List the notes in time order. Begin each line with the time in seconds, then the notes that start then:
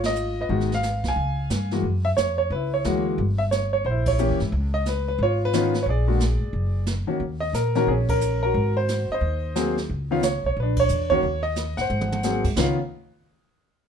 Already playing: G#1 F4
0.03 D#5, snare, ride
0.16 hi-hat pedal
0.41 B4 D#5
0.49 G#1 D#3 G#3 B3 F#4, brush sweep
0.60 snare
0.72 F5, snare
0.83 snare, hi-hat pedal
1.04 B1, kick, snare
1.08 F5 G#5
1.16 C#2, brush sweep
1.50 G2, snare, hi-hat pedal
1.71 E3 G#3 A#3 F#4, snare
1.83 F#2, brush sweep
2.05 E5
2.17 F2 C#5, snare, hi-hat pedal
2.38 C#5
2.50 C#2 B4, brush sweep
2.55 E4
2.74 C#5
2.84 D2 E3 G#3 A#3 F#4, snare, hi-hat pedal
3.18 G1, brush sweep
3.38 E5
3.51 C#5, snare, hi-hat pedal
3.73 C#5
3.85 A#1 C5, brush sweep
3.90 E4
4.06 C#5, kick, ride
4.18 E3 A#3 C#4 G4, hi-hat pedal
4.30 E2
4.40 G#2, snare
4.52 C#2, brush sweep
4.74 D#5
4.86 B4, snare, hi-hat pedal
5.08 B4
5.18 G#1, brush sweep
5.23 F4 C#5
5.45 B4
5.53 D#3 B3 C#4 F4, snare, hi-hat pedal
5.74 snare
5.83 A#1 C#5
5.87 G#4 D5, brush sweep
6.07 D3 G#3 A#3 F#4
6.20 snare, hi-hat pedal
6.39 G#1
6.53 F#1, brush sweep
6.86 snare, hi-hat pedal
7.07 D#3 A#3 C#4 F#4, muted upright bass stroke
7.20 D#2, brush sweep
7.40 D#5
7.53 A#2 A#4, snare, hi-hat pedal
7.75 D#3 A#3 C#4 F#4 A#4, snare
7.87 A#1 C#4 G#4, brush sweep
8.09 A#4, kick, ride
8.21 hi-hat pedal
8.43 F#4 A#4
8.54 G#1, brush sweep
8.77 C5
8.88 snare, hi-hat pedal
9.09 D#5, muted upright bass stroke
9.14 C5
9.21 D#2, brush sweep
9.56 F#3 A#3 C4 G#4, snare, hi-hat pedal
9.77 snare
9.90 C#2, brush sweep
10.11 D#3 B3 C#4 F4 F5
10.23 C#5, snare, hi-hat pedal
10.44 B1 C#5
10.56 A#1 B4, brush sweep
10.63 D4
10.76 C#5, kick, ride
10.89 E2, hi-hat pedal
11.10 D#3 A#3 C#4 F#4 C#5, kick
11.22 D#2, brush sweep
11.43 D#5
11.56 snare, hi-hat pedal
11.77 G1 C5 F#5, snare
11.90 G#1, mid tom
12.01 mid tom
12.12 mid tom
12.23 F#3 A#3 C4 G#4, snare, hi-hat pedal
12.44 G#2, kick, crash
12.56 C#2 D#3 B3 C#4 F4 F5, kick, snare, crash